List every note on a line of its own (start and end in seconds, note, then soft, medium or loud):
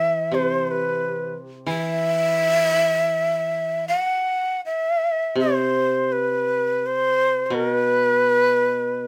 0.00 1.33 E3 soft
0.00 0.36 E5 medium
0.32 1.68 C3 soft
0.32 0.67 C5 medium
0.67 1.35 B4 medium
0.67 0.72 C5 medium
1.66 3.89 E3 soft
1.66 3.85 E5 medium
3.88 4.61 F#5 medium
4.66 5.35 E5 medium
5.35 7.51 C3 soft
5.35 6.14 C5 medium
6.12 6.87 B4 medium
6.86 7.46 C5 medium
7.46 7.55 C5 soft
7.50 9.07 B2 medium
7.50 7.68 A#4 medium
7.68 9.07 B4 medium